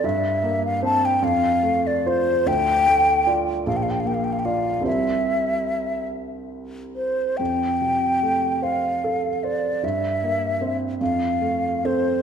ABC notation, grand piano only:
X:1
M:6/8
L:1/8
Q:3/8=49
K:F
V:1 name="Grand piano"
G,, B, [Cc] F,, A, [Fc] | D,, A, [Fd] B,,, B, [Fd] | [C,,G,Cc]6 | F,, C, A, c A c |
G,, B, [Cc] F,, A, [CA] |]